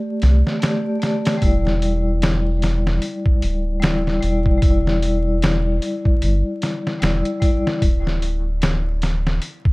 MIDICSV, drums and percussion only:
0, 0, Header, 1, 2, 480
1, 0, Start_track
1, 0, Key_signature, 1, "minor"
1, 0, Tempo, 800000
1, 853, Time_signature, 4, 2, 24, 8
1, 5837, End_track
2, 0, Start_track
2, 0, Title_t, "Drums"
2, 130, Note_on_c, 9, 46, 65
2, 138, Note_on_c, 9, 38, 44
2, 190, Note_off_c, 9, 46, 0
2, 198, Note_off_c, 9, 38, 0
2, 280, Note_on_c, 9, 38, 40
2, 340, Note_off_c, 9, 38, 0
2, 372, Note_on_c, 9, 46, 74
2, 380, Note_on_c, 9, 38, 91
2, 432, Note_off_c, 9, 46, 0
2, 440, Note_off_c, 9, 38, 0
2, 611, Note_on_c, 9, 46, 59
2, 619, Note_on_c, 9, 38, 47
2, 671, Note_off_c, 9, 46, 0
2, 679, Note_off_c, 9, 38, 0
2, 753, Note_on_c, 9, 46, 69
2, 760, Note_on_c, 9, 38, 85
2, 813, Note_off_c, 9, 46, 0
2, 820, Note_off_c, 9, 38, 0
2, 851, Note_on_c, 9, 46, 76
2, 852, Note_on_c, 9, 36, 101
2, 911, Note_off_c, 9, 46, 0
2, 912, Note_off_c, 9, 36, 0
2, 1000, Note_on_c, 9, 38, 36
2, 1060, Note_off_c, 9, 38, 0
2, 1092, Note_on_c, 9, 46, 70
2, 1152, Note_off_c, 9, 46, 0
2, 1332, Note_on_c, 9, 46, 88
2, 1340, Note_on_c, 9, 38, 120
2, 1392, Note_off_c, 9, 46, 0
2, 1400, Note_off_c, 9, 38, 0
2, 1574, Note_on_c, 9, 46, 66
2, 1581, Note_on_c, 9, 38, 53
2, 1634, Note_off_c, 9, 46, 0
2, 1641, Note_off_c, 9, 38, 0
2, 1721, Note_on_c, 9, 38, 54
2, 1781, Note_off_c, 9, 38, 0
2, 1811, Note_on_c, 9, 46, 80
2, 1871, Note_off_c, 9, 46, 0
2, 1954, Note_on_c, 9, 36, 87
2, 2014, Note_off_c, 9, 36, 0
2, 2054, Note_on_c, 9, 46, 62
2, 2114, Note_off_c, 9, 46, 0
2, 2293, Note_on_c, 9, 46, 79
2, 2301, Note_on_c, 9, 38, 113
2, 2353, Note_off_c, 9, 46, 0
2, 2361, Note_off_c, 9, 38, 0
2, 2443, Note_on_c, 9, 38, 37
2, 2503, Note_off_c, 9, 38, 0
2, 2535, Note_on_c, 9, 46, 66
2, 2595, Note_off_c, 9, 46, 0
2, 2674, Note_on_c, 9, 36, 81
2, 2734, Note_off_c, 9, 36, 0
2, 2773, Note_on_c, 9, 36, 107
2, 2773, Note_on_c, 9, 46, 80
2, 2833, Note_off_c, 9, 36, 0
2, 2833, Note_off_c, 9, 46, 0
2, 2924, Note_on_c, 9, 38, 41
2, 2983, Note_off_c, 9, 38, 0
2, 3015, Note_on_c, 9, 46, 73
2, 3075, Note_off_c, 9, 46, 0
2, 3254, Note_on_c, 9, 46, 87
2, 3262, Note_on_c, 9, 38, 122
2, 3314, Note_off_c, 9, 46, 0
2, 3322, Note_off_c, 9, 38, 0
2, 3492, Note_on_c, 9, 46, 66
2, 3552, Note_off_c, 9, 46, 0
2, 3632, Note_on_c, 9, 36, 96
2, 3692, Note_off_c, 9, 36, 0
2, 3732, Note_on_c, 9, 46, 80
2, 3792, Note_off_c, 9, 46, 0
2, 3972, Note_on_c, 9, 46, 66
2, 3979, Note_on_c, 9, 38, 45
2, 4032, Note_off_c, 9, 46, 0
2, 4039, Note_off_c, 9, 38, 0
2, 4121, Note_on_c, 9, 38, 44
2, 4181, Note_off_c, 9, 38, 0
2, 4212, Note_on_c, 9, 46, 86
2, 4220, Note_on_c, 9, 38, 109
2, 4272, Note_off_c, 9, 46, 0
2, 4280, Note_off_c, 9, 38, 0
2, 4352, Note_on_c, 9, 42, 41
2, 4412, Note_off_c, 9, 42, 0
2, 4451, Note_on_c, 9, 36, 87
2, 4452, Note_on_c, 9, 46, 70
2, 4511, Note_off_c, 9, 36, 0
2, 4512, Note_off_c, 9, 46, 0
2, 4602, Note_on_c, 9, 38, 55
2, 4662, Note_off_c, 9, 38, 0
2, 4691, Note_on_c, 9, 36, 101
2, 4692, Note_on_c, 9, 46, 84
2, 4751, Note_off_c, 9, 36, 0
2, 4752, Note_off_c, 9, 46, 0
2, 4842, Note_on_c, 9, 38, 39
2, 4902, Note_off_c, 9, 38, 0
2, 4934, Note_on_c, 9, 46, 67
2, 4994, Note_off_c, 9, 46, 0
2, 5171, Note_on_c, 9, 46, 84
2, 5179, Note_on_c, 9, 38, 113
2, 5231, Note_off_c, 9, 46, 0
2, 5239, Note_off_c, 9, 38, 0
2, 5411, Note_on_c, 9, 46, 65
2, 5419, Note_on_c, 9, 38, 55
2, 5471, Note_off_c, 9, 46, 0
2, 5479, Note_off_c, 9, 38, 0
2, 5560, Note_on_c, 9, 38, 55
2, 5620, Note_off_c, 9, 38, 0
2, 5650, Note_on_c, 9, 46, 78
2, 5710, Note_off_c, 9, 46, 0
2, 5791, Note_on_c, 9, 36, 95
2, 5837, Note_off_c, 9, 36, 0
2, 5837, End_track
0, 0, End_of_file